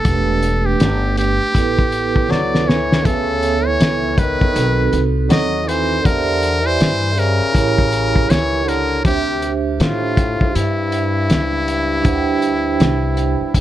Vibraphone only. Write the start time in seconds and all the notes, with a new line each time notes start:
0.02 A3 D4
0.06 G4 B4
1.52 B3 E4 A4
1.58 B4
1.64 B4
3.02 B3 A4 E5
3.08 B4
3.14 C#5
4.52 D#4 F#4 A4
4.58 C4
6.03 G4 C5 D5
6.08 E5
7.52 E4 G4 A#4
7.58 C#5
9.02 D4 G4
9.06 C5 E5
12.02 D4 G4 C5
12.08 F#5
12.14 G5